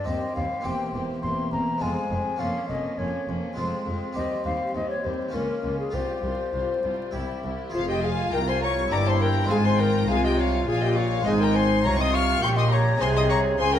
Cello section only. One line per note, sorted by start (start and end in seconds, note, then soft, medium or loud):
0.06 0.14 D#2 soft
0.35 0.43 D#2 soft
0.64 0.72 E2 soft
0.94 1.02 E2 medium
1.23 1.31 E2 medium
1.53 1.61 E2 soft
1.82 1.90 F2 medium
2.12 2.20 F2 soft
2.41 2.49 F2 medium
2.70 2.78 F2 soft
2.99 3.07 F2 medium
3.28 3.36 F2 soft
3.58 3.66 F2 medium
3.87 3.95 F2 soft
4.16 4.24 D#2 medium
4.45 4.53 D#2 medium
4.75 4.83 D#2 soft
5.04 5.12 D#2 soft
5.34 5.42 C#2 medium
5.63 5.71 C#2 soft
5.93 6.01 C2 medium
6.23 6.31 C2 soft
6.54 6.62 C2 soft
6.84 6.92 C2 soft
7.14 7.22 C2 soft
7.43 7.51 C2 soft
7.74 8.29 F2 medium
8.33 8.91 C2 medium
8.92 9.49 G2 medium
9.50 10.08 G#2 medium
10.10 10.68 C3 medium
10.68 11.25 A#2 medium
11.27 11.84 G#2 medium
11.85 12.43 C3 medium
12.43 13.00 A#2 medium
13.01 13.57 C3 medium
13.59 13.79 C#3 medium